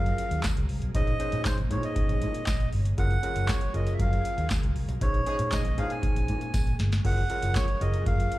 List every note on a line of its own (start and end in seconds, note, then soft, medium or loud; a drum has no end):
0.00 0.12 F#2 loud
0.00 0.93 F3 medium
0.00 0.93 F#3 medium
0.00 0.38 C#4 medium
0.00 0.38 F4 medium
0.00 0.38 G#4 medium
0.00 0.93 G#4 medium
0.00 0.38 A#4 medium
0.00 0.93 A#4 medium
0.00 0.41 F5 medium
0.06 closed hi-hat medium
0.18 closed hi-hat medium
0.31 0.41 D#2 medium
0.31 closed hi-hat soft
0.43 kick loud
0.43 snare loud
0.43 clap medium
0.43 closed hi-hat medium
0.43 tambourine loud
0.56 0.66 C#2 medium
0.56 closed hi-hat medium
0.69 0.79 C2 medium
0.69 open hi-hat medium
0.82 0.92 B1 medium
0.82 closed hi-hat soft
0.94 1.14 A#1 loud
0.94 2.96 G#3 medium
0.94 2.96 A#3 medium
0.94 1.12 C#4 medium
0.94 2.96 C#4 medium
0.94 1.12 D#4 medium
0.94 1.12 G#4 medium
0.94 1.13 C5 medium
0.94 1.42 D#5 loud
0.94 kick loud
0.94 closed hi-hat loud
1.07 closed hi-hat soft
1.20 1.55 C#4 medium
1.20 1.55 D#4 medium
1.20 1.55 G#4 medium
1.20 1.56 C5 medium
1.20 closed hi-hat medium
1.32 1.43 A#2 medium
1.32 closed hi-hat medium
1.45 1.58 C5 loud
1.45 kick loud
1.45 snare loud
1.45 clap medium
1.45 closed hi-hat loud
1.45 tambourine loud
1.58 1.72 A#1 loud
1.58 closed hi-hat medium
1.70 1.90 A#2 loud
1.70 2.41 C#4 medium
1.70 2.41 D#4 medium
1.70 2.41 G#4 medium
1.70 2.42 C5 medium
1.70 1.85 C#5 medium
1.70 closed hi-hat medium
1.83 2.69 D#5 medium
1.83 closed hi-hat medium
1.96 kick loud
1.96 closed hi-hat loud
2.09 2.23 A#1 medium
2.09 closed hi-hat medium
2.22 2.41 A#2 loud
2.22 closed hi-hat medium
2.34 closed hi-hat medium
2.47 2.67 A#1 loud
2.47 kick loud
2.47 snare loud
2.47 clap medium
2.47 closed hi-hat loud
2.47 tambourine loud
2.60 closed hi-hat soft
2.73 2.92 G1 loud
2.73 open hi-hat medium
2.85 closed hi-hat soft
2.98 3.17 F#1 loud
2.98 5.00 F3 medium
2.98 5.00 F#3 medium
2.98 3.15 C#4 medium
2.98 3.16 F4 medium
2.98 3.16 G#4 medium
2.98 5.00 G#4 medium
2.98 5.00 A#4 loud
2.98 3.16 A#4 medium
2.98 3.51 F#5 loud
2.98 kick loud
2.98 closed hi-hat medium
3.11 closed hi-hat soft
3.23 3.58 C#4 medium
3.23 3.59 F4 medium
3.23 3.59 G#4 medium
3.23 3.59 A#4 medium
3.23 closed hi-hat medium
3.36 3.46 F#1 loud
3.36 closed hi-hat medium
3.49 3.73 C#5 medium
3.49 kick loud
3.49 snare loud
3.49 clap loud
3.49 closed hi-hat loud
3.49 tambourine medium
3.61 closed hi-hat medium
3.74 3.94 F#1 loud
3.74 4.45 C#4 medium
3.74 4.45 F4 medium
3.74 4.45 G#4 medium
3.74 4.45 A#4 medium
3.74 3.94 D#5 medium
3.74 closed hi-hat medium
3.87 closed hi-hat medium
3.94 4.00 E5 medium
3.99 4.19 F#2 loud
3.99 4.48 F5 loud
3.99 kick loud
3.99 closed hi-hat loud
4.13 closed hi-hat medium
4.25 closed hi-hat medium
4.38 4.48 D#2 medium
4.38 closed hi-hat soft
4.50 kick loud
4.50 snare loud
4.50 clap medium
4.50 closed hi-hat loud
4.50 tambourine medium
4.63 4.73 C#2 medium
4.63 closed hi-hat soft
4.76 4.86 C2 medium
4.76 open hi-hat medium
4.88 4.98 B1 medium
4.88 closed hi-hat medium
5.01 5.21 A#1 loud
5.01 7.03 G#3 medium
5.01 7.03 A#3 medium
5.01 5.19 C#4 medium
5.01 7.03 C#4 medium
5.01 5.19 D#4 medium
5.01 5.19 G#4 medium
5.01 5.19 C5 medium
5.01 5.54 C#5 loud
5.01 kick loud
5.01 closed hi-hat medium
5.14 closed hi-hat soft
5.26 5.35 F3 loud
5.26 5.35 G#3 loud
5.26 5.62 C#4 medium
5.26 5.62 D#4 medium
5.26 5.35 D#4 medium
5.26 5.35 G#4 loud
5.26 5.62 G#4 medium
5.26 5.62 C5 medium
5.26 closed hi-hat medium
5.39 5.49 A#2 loud
5.39 closed hi-hat medium
5.52 5.63 F3 medium
5.52 5.63 G#3 medium
5.52 5.63 D#4 medium
5.52 5.63 G#4 medium
5.52 5.79 D#5 medium
5.52 kick loud
5.52 snare loud
5.52 clap medium
5.52 closed hi-hat medium
5.52 tambourine medium
5.65 5.79 A#1 loud
5.65 closed hi-hat medium
5.77 5.97 A#2 loud
5.77 5.94 F3 medium
5.77 5.94 G#3 medium
5.77 6.48 C#4 medium
5.77 6.48 D#4 medium
5.77 5.94 D#4 loud
5.77 5.94 G#4 loud
5.77 6.48 G#4 medium
5.77 6.48 C5 medium
5.77 5.91 F5 loud
5.77 closed hi-hat medium
5.90 6.76 G#5 loud
5.90 closed hi-hat medium
6.03 kick loud
6.03 closed hi-hat medium
6.16 6.30 A#1 loud
6.16 closed hi-hat medium
6.28 6.48 A#2 loud
6.28 closed hi-hat medium
6.41 closed hi-hat soft
6.54 6.73 A#1 loud
6.54 kick loud
6.54 snare medium
6.54 closed hi-hat medium
6.54 tambourine medium
6.67 closed hi-hat soft
6.79 6.99 G1 loud
6.79 snare medium
6.79 closed hi-hat medium
6.92 snare medium
6.92 closed hi-hat medium
7.04 7.24 F#1 loud
7.04 8.39 F3 medium
7.04 8.39 F#3 medium
7.04 7.22 C#4 medium
7.04 7.22 F4 medium
7.04 8.39 G#4 medium
7.04 7.23 G#4 medium
7.04 8.39 A#4 loud
7.04 7.23 A#4 medium
7.04 7.58 F#5 loud
7.04 kick loud
7.04 crash medium
7.17 closed hi-hat soft
7.30 7.65 C#4 medium
7.30 7.65 F4 medium
7.30 7.66 G#4 medium
7.30 7.66 A#4 medium
7.30 closed hi-hat medium
7.42 7.53 F#1 loud
7.42 closed hi-hat medium
7.55 7.82 C#5 loud
7.55 kick loud
7.55 snare loud
7.55 clap medium
7.55 closed hi-hat loud
7.55 tambourine medium
7.68 closed hi-hat medium
7.81 8.00 F#1 medium
7.81 8.39 C#4 medium
7.81 8.39 F4 medium
7.81 8.39 G#4 medium
7.81 8.39 A#4 medium
7.81 8.05 D#5 medium
7.81 closed hi-hat medium
7.94 closed hi-hat medium
8.06 8.26 F#2 loud
8.06 8.39 F5 loud
8.06 kick loud
8.06 closed hi-hat loud
8.20 closed hi-hat medium
8.32 closed hi-hat medium